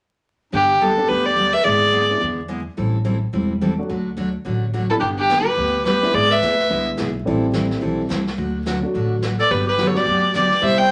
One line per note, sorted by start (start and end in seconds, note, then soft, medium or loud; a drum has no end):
0.52 0.98 G1 medium
0.52 0.72 D3 medium
0.52 0.72 G3 medium
0.52 0.72 B3 medium
0.52 0.72 D4 soft
0.52 0.82 D4 medium
0.52 0.72 G4 medium
0.52 0.83 G4 medium
0.80 0.91 D3 medium
0.80 0.92 G3 medium
0.80 0.92 B3 medium
0.80 0.92 D4 medium
0.80 1.11 D4 medium
0.80 0.92 G4 medium
0.80 1.10 A4 medium
0.97 1.34 G3 medium
0.97 1.34 B3 medium
0.97 1.34 D4 medium
0.97 1.35 G4 medium
1.08 1.54 D2 medium
1.08 1.28 D3 soft
1.08 1.28 G3 medium
1.08 1.28 B3 medium
1.08 1.28 D4 medium
1.08 1.28 G4 medium
1.08 1.26 G4 medium
1.08 1.27 B4 medium
1.25 1.56 G4 medium
1.25 1.54 D5 medium
1.36 1.47 D3 medium
1.36 1.47 G3 medium
1.36 1.47 B3 medium
1.36 1.48 D4 medium
1.36 1.48 G4 medium
1.53 1.65 B4 medium
1.53 1.65 E5 medium
1.64 2.10 G#1 medium
1.64 1.84 D3 medium
1.64 1.84 G#3 medium
1.64 1.84 B3 medium
1.64 1.84 E4 medium
1.64 2.20 G#4 medium
1.64 1.84 G#4 medium
1.64 2.21 D5 medium
1.92 2.03 D3 medium
1.92 2.03 G#3 medium
1.92 2.03 B3 medium
1.92 2.04 E4 medium
1.92 2.03 G#4 medium
2.10 2.20 G#3 medium
2.10 2.20 B3 medium
2.10 2.20 D4 medium
2.10 2.21 E4 medium
2.20 2.66 E2 medium
2.20 2.40 D3 medium
2.20 2.40 G#3 medium
2.20 2.40 B3 medium
2.20 2.40 E4 soft
2.20 2.40 G#4 medium
2.48 2.59 D3 medium
2.48 2.60 G#3 medium
2.48 2.60 B3 medium
2.48 2.60 E4 medium
2.48 2.60 G#4 medium
2.77 3.23 A1 medium
2.77 2.96 E3 soft
2.77 2.96 G3 medium
2.77 2.97 C4 medium
2.77 2.97 E4 medium
2.77 2.97 A4 medium
3.05 3.16 E3 medium
3.05 3.16 G3 medium
3.05 3.16 C4 medium
3.05 3.16 E4 medium
3.05 3.16 A4 medium
3.33 3.78 E1 medium
3.33 3.52 E3 medium
3.33 3.52 G3 medium
3.33 3.53 C4 medium
3.33 3.53 E4 medium
3.33 3.53 A4 medium
3.61 3.72 E3 medium
3.61 3.72 G3 medium
3.61 3.72 C4 medium
3.61 3.73 E4 medium
3.61 3.73 A4 medium
3.78 3.88 F#3 medium
3.78 3.88 A3 medium
3.78 3.88 D4 medium
3.78 3.89 F#4 medium
3.89 4.34 D2 medium
3.89 4.09 D3 soft
3.89 4.09 F#3 medium
3.89 4.09 A3 medium
3.89 4.09 D4 medium
3.89 4.09 F#4 medium
4.17 4.28 D3 medium
4.17 4.28 F#3 medium
4.17 4.28 A3 medium
4.17 4.28 D4 medium
4.17 4.28 F#4 medium
4.45 4.90 A1 medium
4.45 4.64 D3 medium
4.45 4.65 F#3 soft
4.45 4.65 A3 medium
4.45 4.65 D4 medium
4.45 4.65 F#4 medium
4.73 4.84 D3 medium
4.73 4.84 F#3 medium
4.73 4.85 A3 medium
4.73 4.84 D4 medium
4.73 4.85 F#4 medium
4.90 5.01 G3 soft
4.90 5.01 B3 medium
4.90 5.01 D4 soft
4.90 4.95 E4 medium
4.90 5.01 G4 soft
4.90 4.95 A4 medium
4.99 5.46 G1 medium
4.99 5.21 D3 medium
4.99 5.21 G3 medium
4.99 5.21 B3 soft
4.99 5.07 D4 medium
4.99 5.21 D4 medium
4.99 5.08 G4 medium
4.99 5.21 G4 medium
4.99 brush sweep soft
5.17 5.49 D4 medium
5.17 5.48 G4 medium
5.29 5.41 D3 medium
5.29 5.41 G3 medium
5.29 5.41 B3 medium
5.29 5.41 D4 medium
5.29 5.41 G4 medium
5.29 snare medium
5.29 hi-hat pedal medium
5.47 5.84 G4 medium
5.47 5.85 B4 medium
5.57 6.02 D2 medium
5.57 5.77 D3 medium
5.57 5.77 G3 medium
5.57 5.77 B3 medium
5.57 5.77 D4 soft
5.57 5.77 G4 medium
5.57 brush sweep soft
5.85 5.96 D3 medium
5.85 5.96 G3 medium
5.85 5.97 B3 medium
5.85 5.97 D4 medium
5.85 6.14 G4 medium
5.85 5.97 G4 medium
5.85 6.16 B4 medium
5.85 snare medium
5.85 hi-hat pedal medium
6.02 6.13 G#3 medium
6.02 6.13 B3 medium
6.02 6.13 D4 medium
6.02 6.13 E4 medium
6.02 snare soft
6.13 6.36 G#1 medium
6.13 6.33 D3 medium
6.13 6.33 G#3 medium
6.13 6.33 B3 medium
6.13 6.33 E4 medium
6.13 6.31 G#4 medium
6.13 6.33 G#4 medium
6.13 6.33 D5 loud
6.13 brush sweep soft
6.30 6.86 B4 medium
6.30 6.87 E5 medium
6.42 6.66 D2 medium
6.42 6.53 D3 medium
6.42 6.53 G#3 medium
6.42 6.53 B3 medium
6.42 6.53 E4 medium
6.42 6.54 G#4 medium
6.42 snare medium
6.42 hi-hat pedal medium
6.59 snare soft
6.70 6.94 C2 medium
6.70 6.89 D3 medium
6.70 7.11 G#3 medium
6.70 6.89 G#3 medium
6.70 7.12 B3 medium
6.70 6.89 B3 medium
6.70 7.12 D4 soft
6.70 6.90 E4 medium
6.70 7.12 E4 medium
6.70 6.90 G#4 medium
6.70 brush sweep soft
6.97 7.22 B1 medium
6.97 7.08 D3 medium
6.97 7.09 G#3 medium
6.97 7.09 B3 medium
6.97 7.09 E4 medium
6.97 7.09 G#4 medium
6.97 snare medium
6.97 hi-hat pedal medium
7.25 7.71 A1 medium
7.25 7.46 E3 medium
7.25 8.03 G3 medium
7.25 7.46 G3 soft
7.25 8.03 A3 medium
7.25 8.03 C4 medium
7.25 7.46 C4 medium
7.25 8.03 E4 medium
7.25 7.46 E4 medium
7.25 7.46 A4 medium
7.25 brush sweep medium
7.53 7.65 E3 medium
7.53 7.65 G3 medium
7.53 7.65 C4 medium
7.53 7.65 E4 medium
7.53 7.65 A4 medium
7.53 snare medium
7.53 hi-hat pedal medium
7.71 snare soft
7.81 8.06 B1 medium
7.81 8.01 E3 medium
7.81 8.01 G3 medium
7.81 8.01 C4 medium
7.81 8.01 E4 medium
7.81 8.01 A4 medium
7.81 brush sweep soft
8.09 8.34 C2 medium
8.09 8.20 E3 medium
8.09 8.20 G3 medium
8.09 8.21 C4 medium
8.09 8.21 E4 medium
8.09 8.21 A4 medium
8.09 snare medium
8.09 hi-hat pedal medium
8.27 snare soft
8.37 8.83 D2 medium
8.37 8.57 D3 medium
8.37 8.57 F#3 soft
8.37 8.57 A3 soft
8.37 8.57 D4 medium
8.37 8.57 F#4 medium
8.37 brush sweep soft
8.66 8.77 D3 medium
8.66 8.77 F#3 medium
8.66 8.77 A3 medium
8.66 8.77 D4 medium
8.66 8.77 F#4 medium
8.66 snare medium
8.66 hi-hat pedal medium
8.82 9.20 F#3 medium
8.82 9.20 A3 medium
8.82 9.20 D4 medium
8.82 9.20 F#4 medium
8.94 9.39 A1 medium
8.94 9.14 D3 medium
8.94 9.14 F#3 soft
8.94 9.14 A3 medium
8.94 9.14 D4 medium
8.94 9.14 F#4 medium
8.94 brush sweep soft
9.22 9.33 D3 medium
9.22 9.33 F#3 medium
9.22 9.34 A3 medium
9.22 9.33 D4 medium
9.22 9.34 F#4 medium
9.22 snare medium
9.22 hi-hat pedal soft
9.39 9.52 A4 medium
9.39 9.52 D5 medium
9.39 snare soft
9.50 9.95 G1 medium
9.50 9.69 D3 soft
9.50 9.69 F#3 medium
9.50 9.70 B3 soft
9.50 9.70 D4 medium
9.50 9.70 G4 medium
9.50 9.66 G4 medium
9.50 9.67 B4 medium
9.50 brush sweep soft
9.67 9.88 G4 medium
9.67 9.89 B4 medium
9.78 9.89 D3 medium
9.78 9.89 F#3 medium
9.78 9.89 B3 medium
9.78 9.89 D4 medium
9.78 9.89 G4 medium
9.78 snare medium
9.78 hi-hat pedal medium
9.87 9.97 A4 medium
9.87 9.98 C#5 medium
9.94 10.05 G3 medium
9.94 10.05 B3 medium
9.94 10.05 D4 medium
9.94 10.05 F#4 medium
9.94 10.33 G4 medium
9.94 10.35 D5 medium
9.94 snare soft
10.06 10.51 D2 medium
10.06 10.26 D3 medium
10.06 10.26 F#3 medium
10.06 10.26 B3 medium
10.06 10.26 D4 medium
10.06 10.26 G4 medium
10.06 brush sweep soft
10.34 10.45 D3 medium
10.34 10.45 F#3 medium
10.34 10.46 B3 medium
10.34 10.46 D4 medium
10.34 10.64 G4 medium
10.34 10.46 G4 medium
10.34 10.63 D5 medium
10.34 snare medium
10.34 hi-hat pedal medium
10.51 snare soft
10.61 10.91 C2 medium
10.61 10.81 C3 medium
10.61 10.81 G3 medium
10.61 10.81 B3 medium
10.61 10.81 E4 medium
10.61 10.81 G4 medium
10.61 10.79 C5 medium
10.61 10.80 E5 medium
10.61 brush sweep soft
10.78 10.91 C5 medium
10.78 10.91 G5 loud